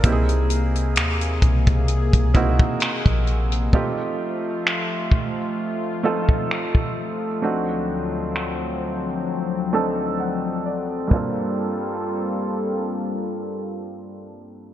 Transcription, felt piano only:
0.00 1.67 A#3 medium
0.00 0.27 A#4 medium
0.04 1.67 C4 medium
0.04 1.68 D#4 medium
0.04 1.68 E4 medium
0.04 0.12 G4 medium
0.12 1.71 G#4 medium
2.34 3.57 A#3 medium
2.34 3.57 C4 medium
2.34 3.57 D#4 medium
2.34 3.57 E4 medium
2.34 3.58 F#4 medium
3.73 5.36 A3 medium
3.73 5.37 C4 medium
3.73 5.37 D#4 medium
3.73 5.37 F4 medium
3.73 5.37 G4 medium
6.03 7.26 A3 medium
6.03 7.26 C4 medium
6.03 7.27 D#4 medium
6.03 7.27 F4 medium
6.03 7.27 A4 medium
7.42 9.06 A3 medium
7.42 9.06 C4 medium
7.42 9.06 D4 medium
7.42 9.06 D#4 medium
7.42 9.06 F#4 medium
9.73 10.95 A3 medium
9.73 10.96 C4 medium
9.73 10.96 D4 medium
9.73 10.96 D#4 medium
9.73 10.96 A4 medium
9.73 10.16 A5 medium
10.20 10.62 F#5 medium
10.66 11.08 D5 medium
11.08 14.74 G2 medium
11.08 14.74 A#3 medium
11.08 14.74 C4 medium
11.12 14.74 D4 medium
11.12 14.74 F4 medium
11.12 14.74 A4 medium

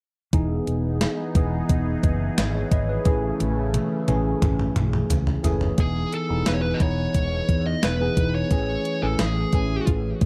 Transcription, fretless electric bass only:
0.33 0.58 E1 medium
0.67 1.04 E1 medium
1.35 1.60 E1 medium
1.70 1.94 E1 medium
2.03 2.28 F#1 medium
2.38 2.62 G#1 medium
2.72 2.96 G#1 medium
3.05 3.30 A1 loud
3.41 3.77 A1 medium
4.08 4.33 A1 medium
4.42 4.67 A1 medium
4.77 5.01 B1 medium
5.11 5.35 C#2 medium
5.45 5.70 F#1 medium
5.78 6.03 E1 medium
6.30 6.42 E1 medium
6.48 6.72 E1 medium
6.80 7.05 E1 medium
7.15 7.39 E1 medium
7.49 7.73 E2 medium
7.83 8.08 E1 medium
8.17 8.42 E1 medium
8.51 8.76 A1 loud
9.02 9.15 A1 medium
9.19 9.44 A1 medium
9.53 9.78 A1 medium
9.87 10.12 A1 loud
10.22 10.26 A2 medium

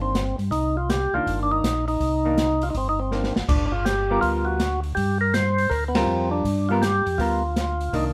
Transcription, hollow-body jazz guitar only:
0.00 0.12 D#3 medium
0.00 0.12 A#3 medium
0.00 0.12 D4 medium
1.14 1.61 D#3 medium
1.14 1.61 A#3 medium
1.14 1.62 D4 medium
2.25 2.36 D#3 medium
2.25 2.37 A#3 medium
2.25 2.37 D4 medium
3.12 3.33 D#3 soft
3.12 3.34 A#3 soft
3.12 3.34 D4 soft
4.11 4.58 G3 medium
4.11 4.58 B3 medium
4.11 4.58 F4 medium
4.11 4.58 A#4 medium
5.95 6.43 G3 medium
5.95 6.43 F4 medium
5.95 6.43 A#4 medium
6.70 6.81 G3 medium
6.70 6.82 B3 medium
6.70 6.82 F4 medium
6.70 6.82 A#4 medium
7.19 7.41 G3 soft
7.19 7.41 B3 medium
7.19 7.41 F4 medium
7.19 7.42 A#4 medium
7.93 8.13 D#3 medium
7.93 8.13 A#3 medium
7.93 8.13 D4 medium

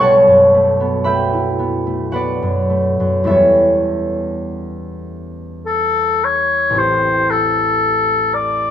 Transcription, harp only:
0.00 3.34 B1 soft
0.00 0.53 A3 soft
0.00 0.79 B3 soft
0.00 1.32 E4 soft
0.00 2.39 A4 soft
0.00 1.04 B4 soft
0.00 3.27 C#5 medium
0.00 1.04 E5 soft
0.00 2.11 F#5 medium
0.00 3.34 A5 medium
0.00 1.03 B5 medium
0.00 1.81 C#6 medium
0.00 2.37 E6 medium
0.27 2.41 F#2 soft
0.54 1.05 A3 soft
0.80 1.58 B3 soft
1.04 1.85 A3 soft
1.04 2.12 B4 soft
1.04 3.26 E5 soft
1.04 4.97 G5 soft
1.04 4.94 B5 medium
1.33 3.25 E4 soft
1.59 2.13 B3 soft
1.87 2.69 A3 soft
2.12 3.24 B3 soft
2.12 3.33 F#4 soft
2.12 6.03 B4 soft
2.12 3.33 D5 soft
2.12 3.33 F#5 medium
2.42 2.99 F#2 soft
2.70 3.34 A3 soft
3.00 3.34 F#2 soft
3.24 6.80 E2 soft
3.24 7.15 G3 soft
3.24 6.81 B3 soft
3.24 6.82 C#4 soft
3.24 6.74 E4 soft
3.24 7.18 A4 soft
3.24 7.17 E5 medium
3.31 6.82 C#5 soft
6.70 8.71 A1 soft
6.70 8.71 A3 soft
6.70 8.71 C4 soft
6.75 8.71 E4 soft
6.75 8.71 G4 soft

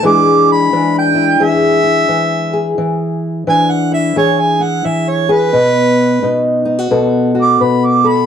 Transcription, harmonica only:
0.06 0.50 D6 loud
0.52 0.96 B5 loud
0.99 1.46 G5 medium
1.44 2.77 E5 loud
3.49 3.72 G#5 loud
3.71 3.93 F#5 medium
3.94 4.16 E5 medium
4.17 4.42 C#5 loud
4.40 4.64 G#5 loud
4.62 4.87 F#5 medium
4.85 5.11 E5 medium
5.09 5.33 C#5 medium
5.32 6.65 B4 loud
7.41 7.64 D6 medium
7.62 7.87 B5 medium
7.85 8.09 D6 medium
8.07 8.26 B5 medium

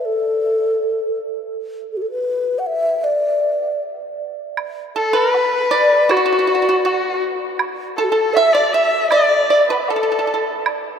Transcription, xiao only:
0.05 1.18 A4 medium
1.92 1.98 A4 medium
1.97 2.03 F#4 medium
2.02 2.10 A4 medium
2.11 2.60 B4 medium
2.59 2.68 F#5 medium
2.67 3.05 E5 medium
3.04 3.81 D5 medium
4.96 5.17 A4 medium
5.16 5.73 B4 medium
5.72 6.12 D5 medium
6.11 7.23 F#4 medium
7.98 8.06 A4 medium
8.04 8.12 F#4 medium
8.10 8.35 A4 medium
8.34 8.56 E5 medium
8.54 8.71 D5 medium
8.72 9.12 E5 medium
9.11 9.49 D5 medium
9.49 9.71 D5 medium
9.70 9.78 F#5 soft
9.70 9.73 A5 soft
9.78 9.85 D5 soft
9.78 9.81 E5 soft
9.86 9.90 B4 soft
9.90 10.43 A4 medium

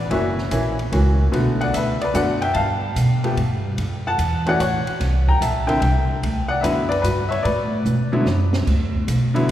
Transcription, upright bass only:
0.11 0.50 F#1 medium
0.52 0.91 A#1 medium
0.92 1.32 C#2 medium
1.33 1.72 B1 medium
1.74 2.13 D2 medium
2.14 2.54 F#2 medium
2.55 2.95 G2 medium
2.96 3.35 B2 medium
3.37 3.76 G2 medium
3.78 4.17 F#2 medium
4.18 4.58 E2 medium
4.59 4.85 A1 medium
4.86 muted upright bass stroke soft
5.00 5.40 C2 medium
5.41 5.80 A#1 medium
5.81 6.21 C2 medium
6.23 6.62 D2 medium
6.63 7.03 F#2 medium
7.03 7.43 G2 medium
7.45 7.84 A2 medium
7.85 8.10 B2 medium
8.12 muted upright bass stroke soft
8.26 8.65 F#2 medium
8.67 9.06 D2 medium
9.08 9.47 B1 medium

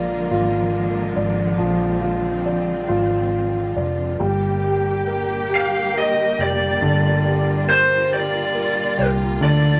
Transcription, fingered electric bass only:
0.00 0.26 A#1 loud
0.31 1.13 G#1 medium
1.17 1.57 G#1 medium
1.59 2.85 A#1 loud
2.89 3.73 G#1 medium
3.77 4.18 F1 medium
4.20 6.34 G1 loud
6.39 6.79 F1 medium
6.82 8.94 G1 loud
8.99 9.39 C2 medium
9.41 9.80 D2 loud

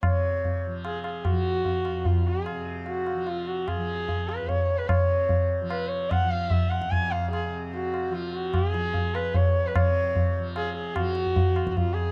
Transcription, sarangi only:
0.05 0.61 C#5 medium
0.85 1.04 G#4 medium
1.06 1.27 G#4 medium
1.25 2.08 F#4 medium
2.06 2.29 F4 medium
2.28 2.68 G#4 medium
2.86 3.30 F#4 medium
3.29 3.49 F4 medium
3.48 3.70 F#4 medium
3.68 4.30 G#4 medium
4.28 4.49 B4 medium
4.47 4.79 C#5 medium
4.78 4.89 B4 medium
4.88 5.49 C#5 medium
5.70 5.89 B4 medium
5.88 6.12 C#5 medium
6.11 6.32 F#5 medium
6.30 6.52 F5 medium
6.51 6.71 E5 medium
6.70 6.92 F#5 medium
6.91 7.13 G#5 medium
7.12 7.31 F5 medium
7.31 7.51 G#4 medium
7.74 8.15 F#4 medium
8.13 8.37 F4 medium
8.35 8.56 F#4 medium
8.54 9.16 G#4 medium
9.15 9.37 B4 medium
9.35 9.68 C#5 medium
9.67 9.78 B4 medium
9.76 10.36 C#5 loud
10.57 10.75 G#4 medium
10.77 10.97 G#4 medium
10.96 11.72 F#4 medium
11.72 11.78 F#4 soft
11.77 11.95 F4 medium
11.94 12.12 G#4 medium

